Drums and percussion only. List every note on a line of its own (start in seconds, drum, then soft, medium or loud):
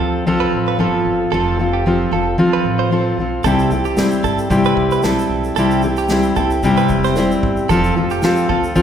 3.44 kick loud
3.44 shaker medium
3.59 shaker soft
3.71 shaker soft
3.85 shaker soft
3.97 snare loud
3.97 shaker medium
4.11 shaker soft
4.24 kick medium
4.24 shaker soft
4.38 shaker soft
4.51 kick medium
4.51 shaker medium
4.64 shaker soft
4.77 kick medium
4.91 shaker soft
5.03 snare loud
5.03 shaker medium
5.19 shaker medium
5.44 shaker soft
5.56 shaker medium
5.71 shaker soft
5.82 shaker soft
5.97 shaker soft
6.08 snare loud
6.08 shaker medium
6.23 shaker soft
6.36 kick medium
6.36 shaker soft
6.51 shaker soft
6.63 kick medium
6.63 shaker medium
6.77 shaker soft
6.89 kick medium
6.89 shaker soft
7.04 snare soft
7.04 shaker soft
7.16 snare loud
7.16 shaker medium
7.31 shaker medium
7.43 kick loud
7.57 shaker soft
7.69 kick medium
7.69 shaker medium
7.84 shaker soft
8.10 shaker soft
8.22 snare loud
8.22 shaker medium
8.36 shaker medium
8.50 kick medium
8.64 shaker soft
8.76 kick medium
8.76 shaker medium